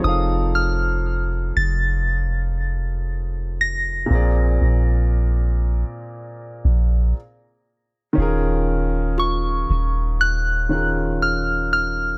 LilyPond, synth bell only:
\new Staff \with { instrumentName = "Synth bell" } { \time 4/4 \key ges \lydian \tempo 4 = 59 ees'''8 f'''4 a'''2 bes'''8~ | bes'''2.~ bes'''8 r8 | r4 des'''4 ges'''4 f'''8 f'''8 | }